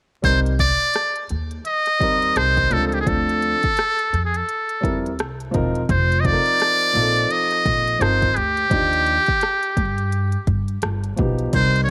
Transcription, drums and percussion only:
0.24 kick loud
0.24 closed hi-hat medium
0.46 closed hi-hat soft
0.59 kick medium
0.59 closed hi-hat medium
0.80 closed hi-hat medium
0.94 cross-stick loud
0.94 closed hi-hat medium
1.16 closed hi-hat medium
1.29 closed hi-hat medium
1.51 closed hi-hat soft
1.65 closed hi-hat medium
1.86 cross-stick soft
1.86 closed hi-hat medium
2.01 kick medium
2.01 closed hi-hat medium
2.22 closed hi-hat soft
2.36 cross-stick loud
2.36 closed hi-hat medium
2.57 kick medium
2.57 closed hi-hat soft
2.71 closed hi-hat medium
2.92 closed hi-hat soft
3.07 kick loud
3.07 closed hi-hat medium
3.29 closed hi-hat soft
3.42 closed hi-hat medium
3.63 kick medium
3.63 closed hi-hat soft
3.77 cross-stick loud
3.77 closed hi-hat medium
3.99 closed hi-hat soft
4.14 cross-stick soft
4.14 closed hi-hat medium
4.34 closed hi-hat medium
4.49 closed hi-hat medium
4.69 closed hi-hat medium
4.84 kick medium
4.84 closed hi-hat medium
5.06 closed hi-hat soft
5.19 cross-stick loud
5.19 closed hi-hat medium
5.40 closed hi-hat soft
5.54 kick medium
5.54 closed hi-hat medium
5.75 closed hi-hat soft
5.89 kick loud
5.89 closed hi-hat medium
6.12 closed hi-hat medium
6.25 kick medium
6.25 closed hi-hat medium
6.46 closed hi-hat soft
6.60 cross-stick loud
6.60 closed hi-hat medium
6.81 closed hi-hat medium
6.95 closed hi-hat medium
7.16 closed hi-hat medium
7.31 closed hi-hat medium
7.51 cross-stick soft
7.51 closed hi-hat soft
7.66 kick medium
7.66 closed hi-hat medium
7.87 closed hi-hat soft
8.01 cross-stick loud
8.01 closed hi-hat medium
8.22 kick medium
8.22 closed hi-hat soft
8.36 closed hi-hat medium
8.57 closed hi-hat soft
8.71 kick loud
8.71 closed hi-hat medium
8.93 closed hi-hat medium
9.07 closed hi-hat medium
9.26 kick medium
9.26 closed hi-hat soft
9.41 cross-stick loud
9.41 closed hi-hat medium
9.63 closed hi-hat medium
9.77 kick medium
9.77 cross-stick soft
9.77 closed hi-hat medium
9.98 closed hi-hat soft
10.12 closed hi-hat medium
10.32 closed hi-hat soft
10.47 kick medium
10.47 closed hi-hat medium
10.68 closed hi-hat soft
10.82 cross-stick loud
10.82 closed hi-hat medium
11.04 closed hi-hat soft
11.17 kick medium
11.17 closed hi-hat medium
11.39 closed hi-hat soft
11.53 kick loud
11.53 closed hi-hat medium
11.53 crash medium
11.76 closed hi-hat medium

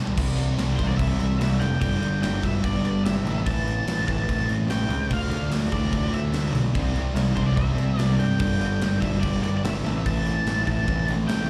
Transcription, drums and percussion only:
0.07 floor tom medium
0.18 kick loud
0.18 crash loud
0.18 crash medium
0.38 crash medium
0.58 snare loud
0.58 crash medium
0.79 kick medium
0.79 crash medium
0.99 kick loud
0.99 crash medium
1.20 crash medium
1.41 snare loud
1.41 crash medium
1.62 crash medium
1.82 kick loud
1.82 crash medium
2.02 crash medium
2.23 snare loud
2.23 crash medium
2.43 kick medium
2.43 crash medium
2.64 kick loud
2.64 crash medium
2.85 crash medium
3.06 snare loud
3.06 crash medium
3.27 crash medium
3.47 kick loud
3.47 crash medium
3.67 crash medium
3.87 snare loud
3.87 crash medium
4.08 kick loud
4.08 crash medium
4.29 kick loud
4.29 crash medium
4.49 crash medium
4.70 snare loud
4.70 crash loud
4.90 crash medium
5.10 kick loud
5.10 crash medium
5.31 crash medium
5.51 snare loud
5.51 crash medium
5.72 kick loud
5.72 crash medium
5.93 kick loud
5.93 crash medium
6.13 crash medium
6.34 snare loud
6.34 crash medium
6.55 crash medium
6.75 kick loud
6.75 crash medium
6.96 crash medium
7.16 snare loud
7.16 crash medium
7.37 kick medium
7.37 crash medium
7.57 kick loud
7.57 crash medium
7.78 crash medium
7.99 snare loud
7.99 crash medium
8.20 crash medium
8.39 kick loud
8.39 crash loud
8.61 crash medium
8.81 snare loud
8.81 crash medium
9.02 kick medium
9.02 crash medium
9.23 kick loud
9.23 crash medium
9.44 crash medium
9.65 snare loud
9.65 crash loud
9.86 crash medium
10.06 kick loud
10.06 crash medium
10.26 crash medium
10.47 snare loud
10.47 crash medium
10.67 kick medium
10.67 crash medium
10.88 kick loud
10.88 crash medium
11.08 crash medium
11.29 snare loud
11.29 crash medium

